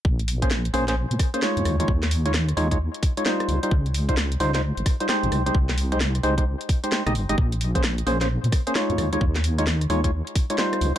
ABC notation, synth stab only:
X:1
M:4/4
L:1/16
Q:"Swing 16ths" 1/4=131
K:Bbdor
V:1 name="Synth stab"
z3 [B,DAc] z2 [B,DAc] [B,DAc] z3 [B,DAc] [A,EFd]3 [A,EFd] | z3 [A,EFd] z2 [A,EFd] [A,EFd] z3 [A,EFd] [G,EFc]3 [G,EFc] | z3 [G,EFc] z2 [G,EFc] [G,EFc] z3 [G,EFc] [A,EGc]3 [A,EGc] | z3 [A,EGc] z2 [A,EGc] [A,EGc] z3 [A,EGc]2 [A,EGe] z [A,EGe] |
z3 [B,DAc] z2 [B,DAc] [B,DAc] z3 [B,DAc] [A,EFd]3 [A,EFd] | z3 [A,EFd] z2 [A,EFd] [A,EFd] z3 [A,EFd] [G,EFc]3 z |]